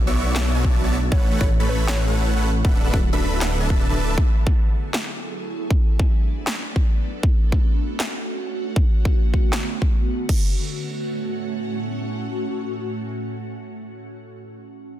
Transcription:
0.00 1.10 B1 medium
0.00 4.13 A3 medium
0.00 1.10 B3 medium
0.00 1.10 D4 medium
0.07 0.33 B3 medium
0.07 0.33 F#4 medium
0.07 0.33 C#5 medium
0.07 0.33 D5 medium
0.07 0.33 E5 medium
0.07 0.33 C#6 medium
0.35 0.52 B3 medium
0.35 0.52 F#4 medium
0.35 0.52 C#5 medium
0.35 0.52 D5 medium
0.35 0.52 E5 medium
0.35 0.52 A5 loud
0.35 snare loud
0.35 clap medium
0.55 0.81 B3 medium
0.55 0.81 F#4 medium
0.55 0.81 C#5 medium
0.55 0.81 D5 medium
0.55 0.81 E5 medium
0.55 0.81 A5 loud
0.64 kick medium
0.84 0.96 B3 medium
0.84 0.96 F#4 medium
0.84 0.96 C#5 medium
0.84 0.96 D5 medium
0.84 0.96 E5 medium
0.84 0.96 A5 loud
1.11 2.63 A1 medium
1.11 1.29 A3 loud
1.11 2.63 C#4 medium
1.11 4.14 F#4 medium
1.11 1.29 A4 medium
1.11 1.29 B4 medium
1.11 1.30 C#5 loud
1.11 1.29 C#5 medium
1.11 1.29 F#5 loud
1.11 kick loud
1.31 1.44 A3 medium
1.31 1.44 A4 medium
1.31 1.44 B4 medium
1.31 1.44 C#5 medium
1.31 1.44 F#5 medium
1.41 1.59 C#5 medium
1.41 kick loud
1.60 1.86 A3 medium
1.60 1.86 A4 medium
1.60 1.86 B4 medium
1.60 1.86 C#5 medium
1.60 1.86 B5 medium
1.69 1.82 B4 medium
1.88 2.05 A3 medium
1.88 2.05 A4 medium
1.88 2.05 B4 medium
1.88 2.05 C#5 medium
1.88 2.07 C#5 medium
1.88 2.05 F#5 medium
1.88 snare loud
1.88 clap medium
2.07 2.34 A3 medium
2.07 2.34 A4 medium
2.07 2.34 B4 medium
2.07 2.34 C#5 medium
2.07 2.34 F#5 loud
2.36 2.49 A3 medium
2.36 2.49 A4 medium
2.36 2.49 B4 medium
2.36 2.49 C#5 medium
2.36 2.49 F#5 loud
2.64 4.16 D1 medium
2.64 4.16 D3 medium
2.64 4.16 B3 medium
2.64 2.81 D4 loud
2.64 2.81 A4 medium
2.64 2.82 B4 medium
2.64 2.81 E5 medium
2.64 2.81 F#5 loud
2.64 kick loud
2.84 2.97 D4 medium
2.84 2.97 A4 medium
2.84 2.97 B4 medium
2.84 2.97 E5 medium
2.84 2.97 F#5 medium
2.94 kick loud
3.13 3.39 D4 medium
3.13 3.39 A4 medium
3.13 3.39 B4 medium
3.13 3.39 E5 medium
3.13 3.39 B5 medium
3.41 3.58 D4 medium
3.41 3.58 A4 medium
3.41 3.58 B4 medium
3.41 3.58 E5 medium
3.41 3.58 F#5 loud
3.41 snare loud
3.41 clap medium
3.60 3.87 D4 medium
3.60 3.87 A4 medium
3.60 3.87 B4 medium
3.60 3.87 E5 medium
3.60 3.87 A5 loud
3.70 kick medium
3.89 4.15 D4 medium
3.89 4.15 A4 medium
3.89 4.15 B4 medium
3.89 4.15 E5 medium
3.89 4.15 A5 loud
4.18 5.50 F#3 medium
4.18 5.50 E4 medium
4.18 5.50 G#4 medium
4.18 5.50 A4 medium
4.18 kick loud
4.47 kick loud
4.94 snare loud
4.94 clap medium
5.51 10.25 A3 medium
5.51 7.21 B3 medium
5.51 7.22 D4 medium
5.71 kick loud
6.00 kick medium
6.47 snare loud
6.47 clap medium
6.76 kick medium
7.23 8.75 C#4 medium
7.23 10.26 F#4 medium
7.23 kick loud
7.52 kick medium
8.00 snare loud
8.00 clap medium
8.76 10.28 D3 medium
8.76 10.28 B3 medium
8.76 kick loud
9.05 kick medium
9.34 kick medium
9.53 snare loud
9.53 clap medium
9.82 kick medium
10.29 14.11 A2 medium
10.29 14.11 A3 medium
10.29 14.11 C#4 medium
10.29 14.11 F#4 medium
10.29 kick medium
10.29 crash medium

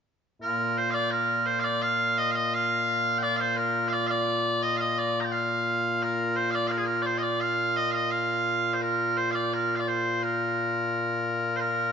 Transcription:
0.42 11.92 A#2 medium
0.42 11.92 A#3 medium
0.42 11.92 F4 medium
0.42 0.78 A#4 medium
0.78 0.91 C5 medium
0.91 1.11 D5 loud
0.91 0.94 F5 loud
1.11 1.46 A#4 medium
1.46 1.60 C5 medium
1.60 1.64 F5 medium
1.64 1.82 D5 medium
1.82 2.18 F5 loud
2.18 2.31 D#5 loud
2.31 2.54 D#5 medium
2.31 2.35 F5 medium
2.54 3.18 F5 loud
3.18 3.23 G5 loud
3.23 3.36 D5 loud
3.36 3.57 C5 medium
3.36 3.40 F5 medium
3.57 3.88 A#4 medium
3.88 3.93 F5 medium
3.93 4.07 D5 medium
4.07 4.62 D5 loud
4.07 4.10 F5 loud
4.62 4.77 D#5 loud
4.77 4.98 D#5 medium
4.77 4.80 F5 medium
4.98 5.20 D5 medium
5.20 5.32 G5 medium
5.20 5.24 A#5 medium
5.32 6.02 F5 medium
6.02 6.36 A#4 medium
6.36 6.51 C5 medium
6.51 6.67 D5 medium
6.51 6.55 F5 medium
6.67 6.77 A#4 medium
6.67 6.71 F5 medium
6.77 6.85 G#4 medium
6.85 7.02 A#4 medium
7.02 7.18 C5 medium
7.02 7.06 D5 medium
7.18 7.22 D#5 medium
7.22 7.40 D5 medium
7.40 7.77 F5 loud
7.77 7.91 D#5 medium
7.91 8.11 D#5 medium
7.91 7.95 F5 medium
8.11 8.74 F5 medium
8.74 8.82 C5 medium
8.82 9.17 A#4 medium
9.17 9.31 C5 medium
9.31 9.54 D5 medium
9.31 9.35 F5 medium
9.54 9.76 A#4 medium
9.76 9.88 D5 medium
9.76 9.80 F5 medium
9.88 10.23 C5 medium
10.23 11.56 A#4 medium
11.56 11.92 A#4 medium
11.56 11.60 C5 medium

